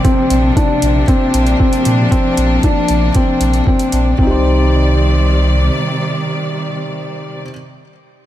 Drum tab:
HH |x-x-x-x-x-xx-xx-|x-x-x-x-x-xx-xx-|----------------|----------------|
BD |o---o---o---o---|o---o---o---o---|o---------------|----------------|